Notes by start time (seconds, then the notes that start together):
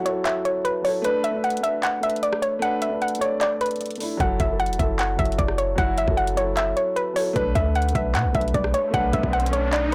Already playing: F#3 E4 F#4 A4
0.03 F#3 E4 C#5, closed hi-hat
0.08 A4
0.25 E5, clap, closed hi-hat
0.45 C#5, closed hi-hat
0.65 B4, closed hi-hat
0.82 F#3 E4 C#5, open hi-hat
0.87 A4
1.02 A3 D4 B4, closed hi-hat
1.07 B4
1.24 E5, closed hi-hat
1.31 A3 D4
1.36 B4
1.44 F#5, closed hi-hat
1.50 closed hi-hat
1.57 A3, closed hi-hat
1.63 D4 B4 E5, closed hi-hat
1.83 F#5, clap, closed hi-hat
2.00 A3 D4 E5, closed hi-hat
2.06 B4, closed hi-hat
2.16 closed hi-hat
2.23 D5, closed hi-hat
2.33 cross-stick
2.42 C#5, closed hi-hat
2.59 A3 D4 F#5, closed hi-hat
2.65 B4
2.82 E5, closed hi-hat
2.89 A3 D4
2.94 B4
3.02 F#5, closed hi-hat
3.08 closed hi-hat
3.15 A3, closed hi-hat
3.21 D4 C#5 D5, closed hi-hat
3.41 D5, clap, closed hi-hat
3.61 B4, closed hi-hat
3.66 closed hi-hat
3.71 closed hi-hat
3.76 closed hi-hat
3.81 closed hi-hat
3.86 closed hi-hat
3.91 closed hi-hat
3.96 A3, closed hi-hat
4.00 D4 E4, open hi-hat
4.17 F#1 F#3 E4 F#5, kick, closed hi-hat
4.23 A4
4.40 F#1 E5, kick, closed hi-hat
4.47 F#3 E4
4.53 A4
4.60 F#5, closed hi-hat
4.66 E1, closed hi-hat
4.73 F#3, closed hi-hat
4.79 F#1 E4 A4 E5, kick, closed hi-hat
4.99 F#5, clap, closed hi-hat
5.16 F#1 F#3 E4 E5, kick, closed hi-hat
5.22 F#4, closed hi-hat
5.32 closed hi-hat
5.38 F#1 D5, kick, closed hi-hat
5.48 cross-stick
5.58 C#5, closed hi-hat
5.76 F#1 F#3 E4 F#5, kick, closed hi-hat
5.81 F#4
5.98 G1 E5, closed hi-hat
6.05 F#1 F#3 E4, kick
6.10 A4
6.17 F#5, closed hi-hat
6.27 closed hi-hat
6.34 F#3 E4 C#5, closed hi-hat
6.40 A4
6.57 E5, clap, closed hi-hat
6.77 C#5, closed hi-hat
6.96 B4, closed hi-hat
7.14 F#3 E4 C#5, open hi-hat
7.19 A4
7.33 B1 A3 D4 B4, kick, closed hi-hat, riser
7.39 B4
7.55 D2 E5, kick, closed hi-hat
7.62 A3 D4
7.68 B4
7.75 F#5, closed hi-hat
7.82 closed hi-hat
7.89 A3, closed hi-hat
7.95 B1 D4 B4 E5, kick, closed hi-hat
8.15 B2 F#5, clap, closed hi-hat
8.25 B1
8.32 B1 A3 D4 E5, kick, closed hi-hat
8.37 B4
8.41 closed hi-hat
8.48 closed hi-hat
8.54 B1 D5, kick, closed hi-hat
8.64 cross-stick
8.74 C#5, closed hi-hat
8.91 B1 A3 D4 F#5, kick, closed hi-hat
8.96 B4
9.13 B1 E5, kick, closed hi-hat
9.21 B1 A3 D4, kick
9.26 B4
9.33 F#5, closed hi-hat
9.40 closed hi-hat
9.46 A3, closed hi-hat
9.53 D4 C#5 D5, closed hi-hat
9.73 D5, clap, closed hi-hat